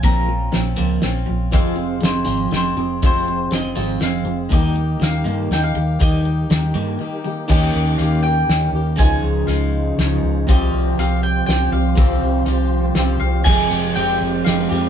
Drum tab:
CC |------|------|------|------|
RD |------|------|------|------|
HH |x-x-x-|x-x-x-|x-x-x-|x-x-x-|
SD |--o-o-|--o-o-|--o-o-|--o-o-|
BD |o-----|o-----|o-----|o-----|

CC |------|x-----|------|------|
RD |------|------|------|------|
HH |x-x---|--x-x-|x-x-x-|x-x-x-|
SD |--o---|----o-|----o-|----o-|
BD |o-----|o-----|o-----|o-----|

CC |------|x-----|
RD |------|-xx-x-|
HH |x-x-x-|------|
SD |----o-|----o-|
BD |o-----|o-----|